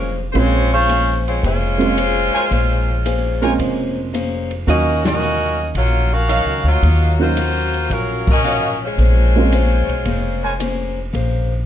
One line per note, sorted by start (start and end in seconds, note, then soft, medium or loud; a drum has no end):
0.00 0.31 F1 medium
0.00 0.17 G#3 medium
0.00 0.19 A#3 medium
0.00 0.17 C#4 medium
0.00 0.20 C#4 medium
0.00 0.17 F4 medium
0.00 0.20 G#4 medium
0.00 0.17 A#4 medium
0.00 0.20 C5 medium
0.32 1.39 A#1 medium
0.32 0.68 G#3 medium
0.32 0.73 A#3 soft
0.32 0.68 A#3 medium
0.32 0.68 C4 soft
0.32 0.68 C#4 soft
0.32 0.74 C#4 soft
0.32 0.69 F4 medium
0.32 0.74 G#4 medium
0.32 0.36 C5 medium
0.32 kick soft
0.32 ride medium
0.37 0.72 G#3 loud
0.37 0.73 C4 medium
0.37 0.73 F4 loud
0.37 0.75 C5 medium
0.37 0.73 C#5 loud
0.73 1.23 G#3 medium
0.73 1.23 C#4 loud
0.73 1.23 F4 medium
0.73 1.23 C5 loud
0.88 1.27 A#3 medium
0.88 1.28 C#4 medium
0.88 1.28 G#4 medium
0.88 1.28 C5 medium
0.88 hi-hat pedal medium
0.88 ride medium
1.28 1.43 G#3 medium
1.28 1.44 C4 medium
1.28 1.44 F4 medium
1.28 1.44 C#5 medium
1.28 ride soft
1.42 2.30 F1 medium
1.42 3.56 G#3 loud
1.42 1.81 A#3 soft
1.42 1.82 C#4 soft
1.42 3.56 F4 medium
1.42 1.82 G#4 soft
1.42 1.83 C5 soft
1.42 3.56 C5 medium
1.42 3.56 C#5 medium
1.42 kick soft
1.42 ride medium
1.78 1.94 G#3 medium
1.78 1.94 A#3 medium
1.78 1.95 C4 medium
1.78 1.95 C#4 medium
1.78 1.95 F4 medium
1.78 ride soft
1.96 2.35 A#3 medium
1.96 2.36 C#4 medium
1.96 2.36 G#4 medium
1.96 2.36 C5 medium
1.96 hi-hat pedal medium
1.96 ride medium
2.34 2.46 A#4 medium
2.34 2.45 C5 medium
2.34 2.46 C#5 medium
2.34 2.46 G#5 loud
2.34 muted upright bass stroke soft
2.34 ride soft
2.50 3.55 A#1 medium
2.50 2.89 A#3 medium
2.50 2.90 C#4 medium
2.50 2.90 G#4 medium
2.50 2.91 C5 medium
2.50 kick soft
2.50 ride medium
3.05 3.44 A#3 medium
3.05 3.44 C#4 medium
3.05 3.44 G#4 medium
3.05 3.45 C5 medium
3.05 hi-hat pedal medium
3.05 ride medium
3.42 4.09 G#3 medium
3.42 4.09 A#3 medium
3.42 4.10 C4 medium
3.42 4.10 C#4 medium
3.42 4.10 F4 medium
3.42 3.53 A#4 medium
3.42 3.54 C5 medium
3.42 3.54 C#5 medium
3.42 3.54 G#5 loud
3.42 ride soft
3.58 4.63 F1 medium
3.58 3.97 A#3 soft
3.58 3.98 C#4 medium
3.58 3.98 G#4 soft
3.58 3.99 C5 medium
3.58 kick soft
3.58 ride medium
4.13 4.52 A#3 medium
4.13 4.52 C#4 medium
4.13 4.52 G#4 medium
4.13 4.52 C5 medium
4.13 hi-hat pedal medium
4.13 ride medium
4.51 ride soft
4.67 5.71 D#2 medium
4.67 5.06 D#3 soft
4.67 6.19 F#3 medium
4.67 5.06 F#3 soft
4.67 6.19 A#3 soft
4.67 6.19 C#4 medium
4.67 5.02 C#4 medium
4.67 5.07 C#4 medium
4.67 6.20 D#4 medium
4.67 5.07 F4 soft
4.67 5.02 F#4 medium
4.67 5.02 A#4 medium
4.67 5.02 D#5 loud
4.67 6.20 F5 medium
4.67 kick soft
4.67 ride medium
5.05 5.71 C#4 medium
5.05 5.71 F#4 medium
5.05 5.72 A#4 loud
5.05 5.71 D#5 loud
5.05 snare medium
5.05 ride medium
5.21 5.60 D#3 medium
5.21 5.60 F#3 medium
5.21 5.60 C#4 medium
5.21 5.61 F4 medium
5.21 hi-hat pedal medium
5.75 6.43 A#1 medium
5.75 6.14 D#3 soft
5.75 6.14 F#3 soft
5.75 6.13 A#3 medium
5.75 6.15 C#4 soft
5.75 6.13 F4 medium
5.75 6.15 F4 soft
5.75 6.12 F#4 medium
5.75 6.13 C#5 medium
5.75 kick soft
5.75 ride medium
6.13 6.66 C#4 medium
6.13 6.66 F#4 medium
6.13 6.67 A#4 medium
6.13 6.66 F5 loud
6.28 6.68 D#3 medium
6.28 6.68 F#3 medium
6.28 6.68 C#4 medium
6.28 7.12 D#4 medium
6.28 6.68 F4 medium
6.28 7.12 C#5 medium
6.28 7.12 D#5 medium
6.28 7.12 F5 loud
6.28 hi-hat pedal medium
6.28 ride medium
6.45 6.62 C#2 medium
6.63 6.81 D2 medium
6.63 7.17 A#3 medium
6.63 7.17 F#4 medium
6.63 7.17 C#5 medium
6.67 7.17 F4 medium
6.82 7.86 D#2 medium
6.82 7.22 D#3 soft
6.82 7.22 F#3 soft
6.82 7.23 C#4 soft
6.82 7.23 F4 soft
6.82 kick soft
6.82 ride medium
7.19 7.35 F#3 medium
7.19 7.35 A#3 medium
7.19 7.91 A#3 medium
7.19 7.35 C#4 medium
7.19 7.35 D#4 medium
7.19 7.35 F4 medium
7.19 7.91 F4 medium
7.19 7.91 F#4 medium
7.19 7.91 C5 loud
7.36 7.75 D#3 medium
7.36 7.76 F#3 medium
7.36 7.76 C#4 medium
7.36 7.76 F4 medium
7.36 hi-hat pedal medium
7.36 ride medium
7.74 ride soft
7.90 8.94 A#1 medium
7.90 8.29 D#3 soft
7.90 8.30 F#3 soft
7.90 8.28 F#3 medium
7.90 8.30 C#4 soft
7.90 8.28 C#4 medium
7.90 8.30 F4 soft
7.90 8.28 F4 medium
7.90 8.29 A#4 medium
7.90 kick soft
7.90 ride medium
8.27 8.80 C#4 medium
8.27 8.79 A#4 medium
8.27 8.79 D#5 loud
8.27 kick medium
8.27 crash medium
8.31 8.80 F#4 medium
8.44 8.83 D#3 medium
8.44 8.83 F#3 medium
8.44 8.83 C#4 medium
8.44 8.84 F4 medium
8.44 8.70 F#4 medium
8.44 8.70 C#5 medium
8.44 8.70 D#5 medium
8.44 8.70 F5 medium
8.44 hi-hat pedal medium
8.84 10.95 G#3 medium
8.84 10.95 F4 medium
8.84 10.95 C5 medium
8.84 10.95 C#5 medium
8.98 9.85 A#1 medium
8.98 9.37 A#3 soft
8.98 9.37 C#4 medium
8.98 9.38 G#4 soft
8.98 9.38 C5 medium
8.98 kick soft
8.98 ride medium
9.36 9.51 G#3 medium
9.36 9.51 A#3 medium
9.36 9.51 C4 medium
9.36 9.52 C#4 medium
9.36 9.51 F4 medium
9.52 9.91 A#3 medium
9.52 9.91 C#4 medium
9.52 9.91 G#4 medium
9.52 9.92 C5 medium
9.52 hi-hat pedal medium
9.52 ride medium
9.88 10.04 B1 medium
9.88 ride soft
10.05 11.09 F1 medium
10.05 10.44 A#3 medium
10.05 10.45 C#4 medium
10.05 10.45 G#4 medium
10.05 10.46 C5 medium
10.05 kick soft
10.05 ride medium
10.43 10.55 A#4 medium
10.43 10.54 C5 medium
10.43 10.54 C#5 medium
10.43 10.54 G#5 medium
10.60 10.99 A#3 medium
10.60 10.99 C#4 medium
10.60 10.99 G#4 medium
10.60 11.00 C5 medium
10.60 hi-hat pedal medium
10.60 ride medium
11.13 11.66 A#1 medium
11.13 11.52 A#3 soft
11.13 11.52 C#4 soft
11.13 11.53 G#4 medium
11.13 11.53 C5 medium
11.13 kick soft
11.13 ride medium